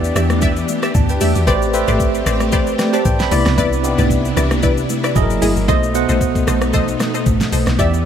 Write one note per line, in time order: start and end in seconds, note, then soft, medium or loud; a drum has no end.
0.00 0.13 E2 loud
0.00 1.45 E3 medium
0.00 1.49 E3 medium
0.00 1.43 B3 medium
0.00 1.49 B3 medium
0.00 1.45 D4 medium
0.00 0.13 G4 medium
0.00 1.22 G4 medium
0.00 3.28 G4 medium
0.00 0.13 D5 medium
0.00 1.36 D5 loud
0.00 0.13 E5 medium
0.04 shaker medium
0.15 0.64 E2 loud
0.15 0.40 G4 medium
0.15 0.40 D5 medium
0.15 0.40 E5 medium
0.15 cross-stick loud
0.15 low conga medium
0.15 shaker loud
0.30 cross-stick loud
0.30 high conga medium
0.30 shaker medium
0.42 0.79 G4 medium
0.42 0.79 D5 medium
0.42 0.79 E5 loud
0.42 kick loud
0.42 low conga medium
0.42 shaker medium
0.56 shaker soft
0.68 high conga medium
0.68 shaker medium
0.82 0.95 G4 medium
0.82 0.95 D5 medium
0.82 0.95 E5 medium
0.82 cross-stick loud
0.82 shaker medium
0.94 1.19 D2 loud
0.94 1.09 A5 medium
0.94 kick loud
0.94 mid tom loud
0.94 low conga medium
0.94 shaker medium
1.09 1.21 B4 medium
1.09 1.21 G5 medium
1.09 shaker medium
1.21 1.34 E2 medium
1.21 1.36 G4 medium
1.21 1.35 G4 medium
1.21 1.36 D5 medium
1.21 1.36 E5 medium
1.21 1.35 E5 medium
1.21 open hi-hat medium
1.21 high conga medium
1.21 shaker medium
1.35 1.46 E2 medium
1.35 1.61 F#4 medium
1.35 1.47 D5 medium
1.35 shaker medium
1.47 1.85 A1 loud
1.47 1.69 A3 medium
1.47 3.30 A3 medium
1.47 3.30 C4 medium
1.47 1.84 G4 loud
1.47 1.69 G4 medium
1.47 1.85 B4 medium
1.47 1.69 B4 medium
1.47 1.85 C5 medium
1.47 1.69 C5 medium
1.47 1.85 D5 loud
1.47 1.69 D5 loud
1.47 kick loud
1.47 low conga medium
1.47 shaker medium
1.62 shaker medium
1.73 2.58 A3 medium
1.73 2.58 G4 medium
1.73 2.58 B4 medium
1.73 2.59 C5 medium
1.73 2.59 E5 loud
1.73 shaker medium
1.88 2.23 A1 loud
1.88 2.23 G4 medium
1.88 2.23 B4 medium
1.88 2.23 C5 medium
1.88 2.24 D5 medium
1.88 mid tom medium
1.88 high conga medium
1.88 shaker medium
2.00 kick medium
2.00 shaker medium
2.15 shaker medium
2.26 2.75 A1 loud
2.26 2.51 G4 medium
2.26 2.51 B4 medium
2.26 2.51 C5 medium
2.26 2.51 D5 medium
2.26 cross-stick loud
2.26 low conga medium
2.26 shaker loud
2.40 cross-stick loud
2.40 high conga medium
2.40 shaker medium
2.52 2.90 G4 loud
2.52 2.90 B4 medium
2.52 2.90 C5 medium
2.52 2.90 D5 loud
2.52 kick loud
2.52 low conga medium
2.52 shaker medium
2.67 shaker soft
2.79 2.93 B4 medium
2.79 3.03 D5 medium
2.79 2.93 G5 medium
2.79 cross-stick medium
2.79 snare medium
2.79 high conga medium
2.79 shaker medium
2.93 3.06 G4 medium
2.93 3.06 B4 medium
2.93 3.06 C5 medium
2.93 3.19 C5 medium
2.93 3.06 D5 medium
2.93 3.18 A5 medium
2.93 shaker medium
3.05 3.30 B1 loud
3.05 3.22 G5 medium
3.05 kick loud
3.05 mid tom loud
3.05 low conga medium
3.05 shaker medium
3.20 3.31 D5 medium
3.20 3.22 B5 medium
3.20 3.39 B5 medium
3.20 snare medium
3.20 shaker medium
3.31 3.45 C2 loud
3.31 3.75 C3 medium
3.31 5.14 C3 medium
3.31 5.14 B3 medium
3.31 3.75 B3 medium
3.31 5.14 D4 medium
3.31 3.46 E4 medium
3.31 5.66 E4 medium
3.31 3.75 E4 medium
3.31 3.46 B4 medium
3.31 3.47 D5 medium
3.31 3.75 D5 loud
3.31 open hi-hat medium
3.31 high conga medium
3.31 shaker medium
3.40 3.57 B5 medium
3.46 3.57 C2 loud
3.46 cross-stick medium
3.46 snare medium
3.46 shaker medium
3.57 3.95 C2 loud
3.57 3.95 E4 medium
3.57 3.95 B4 medium
3.57 3.95 D5 loud
3.57 kick loud
3.57 low conga medium
3.57 shaker medium
3.73 shaker soft
3.84 4.69 C3 medium
3.84 4.69 B3 medium
3.84 3.91 D#4 medium
3.84 4.69 G4 loud
3.84 shaker medium
3.91 4.72 E4 medium
3.98 4.34 C2 loud
3.98 4.34 E4 medium
3.98 4.34 B4 medium
3.98 4.34 D5 medium
3.98 mid tom medium
3.98 high conga medium
3.98 shaker medium
4.10 kick loud
4.10 shaker medium
4.25 shaker medium
4.36 4.85 C2 loud
4.36 4.61 E4 medium
4.36 4.61 B4 medium
4.36 4.61 D5 medium
4.36 cross-stick loud
4.36 low conga medium
4.36 shaker loud
4.51 cross-stick loud
4.51 high conga medium
4.51 shaker medium
4.63 5.00 E4 medium
4.63 5.00 B4 medium
4.63 5.00 D5 loud
4.63 kick loud
4.63 low conga medium
4.63 shaker medium
4.77 shaker medium
4.89 high conga medium
4.89 shaker medium
5.04 5.16 E4 medium
5.04 5.16 B4 medium
5.04 5.16 D5 medium
5.04 cross-stick loud
5.04 shaker medium
5.15 5.40 F#1 loud
5.15 5.59 F#3 medium
5.15 5.68 F#3 medium
5.15 5.68 A#3 medium
5.15 5.59 E4 medium
5.15 5.59 G#4 medium
5.15 5.23 A4 medium
5.15 5.59 D#5 loud
5.15 kick loud
5.15 mid tom loud
5.15 low conga medium
5.15 shaker medium
5.22 5.62 A#4 medium
5.30 shaker medium
5.42 5.55 G1 medium
5.42 5.57 E4 medium
5.42 5.57 G#4 medium
5.42 5.57 A#4 medium
5.42 5.57 D#5 medium
5.42 open hi-hat medium
5.42 high conga medium
5.42 shaker medium
5.56 5.67 G1 loud
5.56 shaker medium
5.68 6.06 B1 loud
5.68 5.90 B2 medium
5.68 5.90 A3 medium
5.68 7.77 A3 medium
5.68 8.05 B3 medium
5.68 7.77 D#4 medium
5.68 6.05 A4 medium
5.68 6.06 C5 medium
5.68 5.90 C5 medium
5.68 6.06 D#5 loud
5.68 5.90 D#5 medium
5.68 kick loud
5.68 low conga medium
5.68 shaker medium
5.83 shaker soft
5.94 6.79 B2 medium
5.94 6.79 A3 medium
5.94 6.80 C5 medium
5.94 6.80 F#5 loud
5.94 shaker medium
6.09 6.44 B1 loud
6.09 6.44 A4 medium
6.09 6.44 C5 medium
6.09 6.45 D#5 medium
6.09 high conga medium
6.09 shaker medium
6.21 kick medium
6.21 shaker medium
6.35 kick loud
6.35 shaker medium
6.47 6.96 B1 loud
6.47 6.72 A4 medium
6.47 6.72 C5 medium
6.47 6.72 D#5 medium
6.47 cross-stick loud
6.47 low conga medium
6.47 shaker loud
6.61 cross-stick loud
6.61 high conga medium
6.61 shaker medium
6.73 7.11 A4 loud
6.73 7.11 C5 medium
6.73 7.11 D#5 loud
6.73 kick loud
6.73 low conga medium
6.73 shaker medium
6.88 shaker medium
7.00 cross-stick medium
7.00 snare medium
7.00 high conga medium
7.00 shaker medium
7.14 7.27 A4 medium
7.14 7.27 C5 medium
7.14 7.27 D#5 medium
7.14 shaker medium
7.26 7.40 A1 loud
7.26 kick loud
7.26 mid tom loud
7.26 high conga medium
7.26 low conga medium
7.26 shaker medium
7.41 snare medium
7.41 shaker medium
7.52 7.66 B1 medium
7.52 7.67 A4 medium
7.52 7.68 C5 medium
7.52 7.68 D#5 medium
7.52 open hi-hat medium
7.52 high conga medium
7.52 shaker medium
7.67 7.78 B1 medium
7.67 cross-stick medium
7.67 snare medium
7.67 shaker medium
7.78 8.05 E2 loud
7.78 8.00 E3 medium
7.78 8.05 E3 medium
7.78 8.00 B3 medium
7.78 8.05 D4 medium
7.78 8.05 G4 loud
7.78 8.05 G4 medium
7.78 8.01 G4 medium
7.78 8.05 D5 medium
7.78 8.01 D5 loud
7.78 8.05 E5 loud
7.78 kick loud
7.78 low conga medium
7.78 shaker medium
7.94 shaker soft